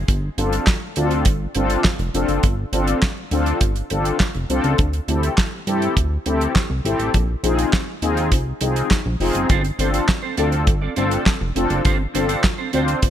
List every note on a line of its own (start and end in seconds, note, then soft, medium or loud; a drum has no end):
0.08 0.30 G1 loud
0.08 kick loud
0.08 closed hi-hat medium
0.37 0.59 G1 loud
0.37 0.65 C4 medium
0.37 0.65 D4 medium
0.37 0.65 F4 medium
0.37 0.65 A4 loud
0.37 closed hi-hat medium
0.53 closed hi-hat medium
0.67 kick loud
0.67 snare loud
0.67 clap medium
0.96 1.27 D2 loud
0.96 1.24 C4 loud
0.96 1.24 D4 medium
0.96 1.24 F4 loud
0.96 1.24 A4 loud
0.96 closed hi-hat medium
1.11 closed hi-hat soft
1.25 1.47 G1 medium
1.25 kick loud
1.25 closed hi-hat medium
1.55 1.77 G1 loud
1.55 1.82 C4 loud
1.55 1.82 D4 medium
1.55 1.83 F4 loud
1.55 1.83 A4 loud
1.55 closed hi-hat medium
1.70 closed hi-hat medium
1.84 kick loud
1.84 snare loud
1.84 clap medium
1.99 2.10 F1 medium
1.99 closed hi-hat soft
2.14 2.25 F1 medium
2.14 2.41 C4 loud
2.14 2.41 D4 loud
2.14 2.41 F4 loud
2.14 2.42 A4 loud
2.14 closed hi-hat medium
2.29 2.40 F#1 medium
2.29 closed hi-hat soft
2.43 2.65 G1 medium
2.43 kick loud
2.43 closed hi-hat medium
2.72 2.94 G1 loud
2.72 3.00 C4 loud
2.72 3.00 D4 loud
2.72 3.00 F4 medium
2.72 3.00 A4 loud
2.72 closed hi-hat medium
2.87 closed hi-hat medium
3.02 kick loud
3.02 snare loud
3.02 clap medium
3.31 3.53 D2 loud
3.31 3.59 C4 loud
3.31 3.59 D4 loud
3.31 3.59 F4 loud
3.31 3.59 A4 loud
3.31 closed hi-hat medium
3.46 closed hi-hat soft
3.61 3.83 G1 medium
3.61 kick loud
3.61 closed hi-hat medium
3.76 closed hi-hat soft
3.90 4.12 G1 loud
3.90 4.18 C4 loud
3.90 4.18 D4 medium
3.90 4.18 F4 medium
3.90 4.18 A4 loud
3.90 closed hi-hat medium
4.05 closed hi-hat medium
4.20 kick loud
4.20 snare loud
4.20 clap medium
4.34 4.46 F1 medium
4.34 closed hi-hat soft
4.49 4.60 C2 medium
4.49 4.77 C4 loud
4.49 4.77 D4 loud
4.49 4.77 F4 loud
4.49 4.77 A4 loud
4.49 closed hi-hat medium
4.64 4.75 C#2 medium
4.64 closed hi-hat soft
4.78 5.00 D2 medium
4.78 kick loud
4.78 closed hi-hat medium
4.93 closed hi-hat soft
5.08 5.30 D2 loud
5.08 5.35 C4 medium
5.08 5.36 E4 medium
5.08 5.36 G4 medium
5.08 5.36 A4 loud
5.08 closed hi-hat medium
5.23 closed hi-hat medium
5.38 kick loud
5.38 snare loud
5.38 clap medium
5.67 5.89 G2 medium
5.67 5.94 C4 loud
5.67 5.94 E4 loud
5.67 5.94 G4 loud
5.67 5.95 A4 loud
5.67 closed hi-hat medium
5.82 closed hi-hat soft
5.97 6.18 D2 medium
5.97 kick loud
5.97 closed hi-hat loud
6.26 6.48 D2 loud
6.26 6.53 C4 loud
6.26 6.53 E4 loud
6.26 6.53 G4 loud
6.26 6.53 A4 loud
6.26 closed hi-hat medium
6.41 closed hi-hat medium
6.56 kick medium
6.56 snare loud
6.56 clap medium
6.70 6.81 C2 medium
6.85 6.96 G#1 medium
6.85 7.12 C4 loud
6.85 7.12 E4 medium
6.85 7.12 G4 medium
6.85 7.12 A4 loud
6.85 closed hi-hat medium
6.99 7.10 A1 medium
6.99 closed hi-hat soft
7.14 7.36 A#1 loud
7.14 kick loud
7.14 closed hi-hat medium
7.43 7.65 A#1 loud
7.43 7.70 C4 loud
7.43 7.71 D#4 loud
7.43 7.71 F4 medium
7.43 7.71 G#4 loud
7.43 closed hi-hat medium
7.59 closed hi-hat medium
7.73 kick loud
7.73 snare loud
7.73 clap medium
8.02 8.33 D#2 medium
8.02 8.29 C4 loud
8.02 8.30 D#4 loud
8.02 8.30 F4 loud
8.02 8.30 G#4 loud
8.02 closed hi-hat medium
8.17 closed hi-hat medium
8.32 8.53 C2 loud
8.32 kick loud
8.32 closed hi-hat medium
8.61 8.83 C2 loud
8.61 8.88 C4 medium
8.61 8.88 D#4 medium
8.61 8.89 F4 medium
8.61 8.89 G#4 loud
8.61 closed hi-hat medium
8.76 closed hi-hat medium
8.91 kick loud
8.91 snare medium
8.91 clap medium
9.06 9.16 A#1 medium
9.20 9.31 F1 medium
9.20 9.47 C4 loud
9.20 9.47 D#4 loud
9.20 9.48 F4 loud
9.20 9.48 G#4 loud
9.20 open hi-hat medium
9.35 9.46 F#1 medium
9.35 closed hi-hat soft
9.49 9.71 G1 loud
9.49 9.65 C4 medium
9.49 9.64 F4 medium
9.49 9.64 A4 medium
9.49 9.63 C5 medium
9.49 kick loud
9.49 closed hi-hat medium
9.64 muted clean electric guitar stroke soft
9.64 closed hi-hat soft
9.79 10.01 G1 loud
9.79 9.91 C4 medium
9.79 10.06 C4 medium
9.79 10.06 D4 medium
9.79 9.92 F4 medium
9.79 10.06 F4 medium
9.79 10.07 A4 loud
9.79 9.92 A4 medium
9.79 9.92 C5 medium
9.79 closed hi-hat medium
9.94 10.07 C4 soft
9.94 10.07 F4 soft
9.94 10.06 A4 soft
9.94 10.06 C5 medium
9.94 closed hi-hat medium
10.08 muted clean electric guitar stroke soft
10.08 kick loud
10.08 snare loud
10.08 clap loud
10.23 10.36 C4 soft
10.23 10.36 F4 soft
10.23 10.36 A4 medium
10.23 10.35 C5 medium
10.37 10.69 D2 loud
10.37 10.53 C4 medium
10.37 10.65 C4 loud
10.37 10.65 D4 loud
10.37 10.52 F4 medium
10.37 10.65 F4 medium
10.37 10.52 A4 medium
10.37 10.65 A4 loud
10.37 10.52 D5 medium
10.37 closed hi-hat medium
10.52 muted clean electric guitar stroke medium
10.52 closed hi-hat medium
10.67 10.89 G1 medium
10.67 muted clean electric guitar stroke soft
10.67 kick loud
10.67 closed hi-hat loud
10.82 10.95 C4 medium
10.82 10.95 F4 medium
10.82 10.95 A4 medium
10.82 10.94 D5 medium
10.96 11.18 G1 loud
10.96 11.12 C4 medium
10.96 11.24 C4 loud
10.96 11.24 D4 medium
10.96 11.11 F4 medium
10.96 11.24 F4 medium
10.96 11.24 A4 loud
10.96 11.10 A4 medium
10.96 11.10 D5 medium
10.96 closed hi-hat medium
11.11 muted clean electric guitar stroke medium
11.11 closed hi-hat medium
11.26 muted clean electric guitar stroke soft
11.26 kick medium
11.26 snare loud
11.26 clap medium
11.41 11.52 F1 medium
11.41 muted clean electric guitar stroke soft
11.55 11.67 F1 medium
11.55 11.82 C4 loud
11.55 11.83 D4 loud
11.55 11.83 F4 loud
11.55 11.83 A4 loud
11.55 closed hi-hat medium
11.70 11.81 F#1 loud
11.70 muted clean electric guitar stroke soft
11.70 closed hi-hat soft
11.84 12.07 G1 loud
11.84 12.00 C4 medium
11.84 11.99 F4 medium
11.84 11.99 A4 medium
11.84 11.98 C5 loud
11.84 kick loud
11.84 closed hi-hat medium
11.99 muted clean electric guitar stroke soft
12.14 12.36 G1 loud
12.14 12.26 C4 medium
12.14 12.41 C4 loud
12.14 12.42 D4 medium
12.14 12.27 F4 medium
12.14 12.42 F4 medium
12.14 12.27 A4 medium
12.14 12.42 A4 loud
12.14 12.27 C5 medium
12.14 closed hi-hat medium
12.29 12.42 C4 soft
12.29 12.42 F4 medium
12.29 12.41 A4 medium
12.29 12.41 C5 medium
12.29 closed hi-hat medium
12.44 kick loud
12.44 snare loud
12.44 clap medium
12.58 12.72 C4 medium
12.58 12.71 F4 soft
12.58 12.71 A4 medium
12.58 12.71 C5 medium
12.73 12.95 D2 medium
12.73 12.89 C4 medium
12.73 13.00 C4 loud
12.73 13.00 D4 loud
12.73 12.88 F4 medium
12.73 13.00 F4 loud
12.73 12.87 A4 medium
12.73 13.01 C5 loud
12.73 12.87 C5 medium
12.73 closed hi-hat medium
12.88 muted clean electric guitar stroke soft
12.88 closed hi-hat soft
13.02 13.10 G1 medium
13.02 muted clean electric guitar stroke soft
13.02 kick loud
13.02 closed hi-hat loud